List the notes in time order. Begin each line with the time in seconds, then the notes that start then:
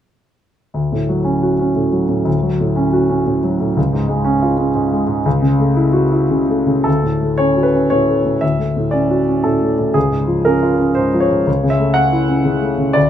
0.74 D2
0.92 A2
1.09 F#3
1.25 C#4
1.43 F#4
1.59 C#4
1.75 A2
1.92 F#3
2.08 A2
2.25 D2
2.43 F#3
2.60 A2
2.76 C#4
2.93 F#4
3.09 C#4
3.27 A2
3.44 F#3
3.60 A2
3.77 C#2
3.93 G#2
4.08 G#3
4.25 C#4
4.42 F4
4.58 C#4
4.75 G#2
4.92 G#3
5.07 G#2
5.26 C#2
5.42 C#3
5.59 A3
5.76 E4
5.93 F#4
6.12 E4
6.30 C#3
6.49 A3
6.67 C#3
6.84 D2 A4
7.03 A2
7.21 A3
7.38 C#4 C#5
7.56 F#4
7.63 B4
7.74 C#4
7.90 A2 C#5
8.08 A3
8.25 A2
8.41 D2 E5
8.59 A3
8.76 A2
8.91 C#4 D5
9.11 F#4
9.28 C#4
9.44 A2 A4
9.61 A3
9.79 A2
9.94 C#2 G#4
10.11 G#2
10.27 F3
10.45 C#4 A#4
10.62 F4
10.79 C#4
10.95 G#2 C5
11.14 F3
11.20 C#5
11.30 G#2
11.47 C#2
11.63 C#3
11.70 E5
11.79 A3
11.94 C#4 F#5
12.12 E4
12.28 C#4
12.45 C#3
12.62 A3
12.78 C#3
12.93 D2 D5